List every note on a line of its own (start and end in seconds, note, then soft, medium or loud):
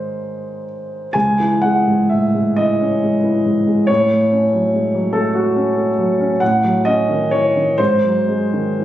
0.00 1.07 G#2 soft
0.00 1.08 D#3 soft
0.00 1.08 G#3 soft
0.00 1.09 D#4 soft
0.00 0.62 C5 medium
1.13 3.86 C#2 soft
1.13 1.63 G#5 medium
1.40 1.78 E3 soft
1.62 2.02 G#3 soft
1.62 2.10 F#5 medium
1.87 2.25 G#2 soft
2.09 2.34 A2 soft
2.09 2.56 E5 medium
2.34 2.71 G#2 soft
2.56 2.93 E3 soft
2.56 3.89 D#5 medium
2.80 3.15 C#4 soft
3.02 3.37 G#3 soft
3.24 3.59 E3 soft
3.46 3.80 G#2 soft
3.66 3.88 G#3 soft
3.87 6.36 A2 medium
3.87 5.14 C#5 medium
4.10 4.44 A3 soft
4.31 4.65 C#4 soft
4.53 4.86 F#3 soft
4.74 4.94 G#3 soft
4.95 5.27 F#3 soft
5.13 5.47 A3 medium
5.13 6.40 A4 medium
5.35 5.68 F#4 soft
5.55 5.89 C#4 soft
5.76 6.10 A3 soft
5.98 6.32 F#3 soft
6.20 6.41 C#4 soft
6.40 7.76 A2 medium
6.40 6.85 F#5 medium
6.64 7.00 F#3 soft
6.85 7.23 C#4 medium
6.85 7.32 D#5 medium
7.09 7.46 D#3 soft
7.31 7.56 E3 soft
7.31 7.79 C#5 medium
7.56 7.80 D#3 soft
7.78 8.85 G#2 medium
7.78 8.85 C5 medium
8.04 8.44 F#3 soft
8.28 8.69 G#3 soft
8.53 8.85 D#3 soft
8.79 8.85 E3 soft